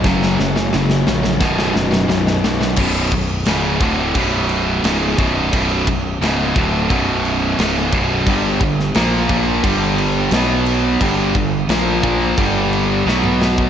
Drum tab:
CC |----------------|x-x-x-x-x-x-x-x-|x-x-x-x-x-x-x-x-|x-x-x-x-x-x-x-x-|
SD |oooooooooooooooo|----o-------o---|----o-------o---|---oo-------o---|
T2 |----------------|----------------|----------------|----------------|
BD |o-------o-------|o-o---o-o-----o-|o-o---o-o-----o-|o-o---o-o-------|

CC |x-x-x-x-x-x-----|
SD |----o-------o-o-|
T2 |-------------o--|
BD |o-o---o-o------o|